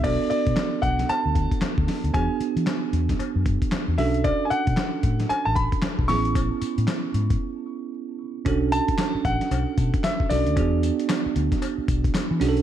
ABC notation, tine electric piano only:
X:1
M:4/4
L:1/8
Q:"Swing 16ths" 1/4=114
K:Bdor
V:1 name="Tine electric piano"
[B,DFA]8 | [B,DFG]6- [B,DFG] [CDFA]- | [CDFA]6- [CDFA] [B,CEG]- | [B,CEG]6- [B,CEG] z |
[CDFA]6- [CDFA] [CDFA] | [B,DFG]6- [B,DFG] [CDFGA] |]